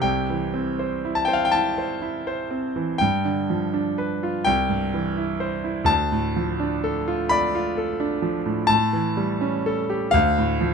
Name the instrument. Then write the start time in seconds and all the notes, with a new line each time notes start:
grand piano
Already playing: C3
0.02 C2 G5
0.30 E3
0.54 C4
0.79 C5
1.05 E4
1.15 A5
1.25 C5 G5
1.33 F5
1.45 G5
1.52 E4 A5
1.78 C5
2.02 E4
2.27 C5
2.51 C4
2.76 E3
2.98 G2 G5
3.25 D3
3.50 F3
3.73 D4
3.98 B4
4.23 F4
4.45 C2 G5
4.70 G2
4.94 E3
5.17 E4
5.40 C5
5.64 E4
5.84 D2 A5
6.12 A2
6.36 F3
6.60 D4
6.84 A4
7.08 F4
7.29 D5 B5
7.55 F4
7.77 A4
8.00 D4
8.22 F3
8.45 A2
8.67 A2 A5
8.93 E3
9.17 G3
9.41 C#4
9.66 A4
9.90 G4
10.11 D2 F5
10.38 A2
10.61 F3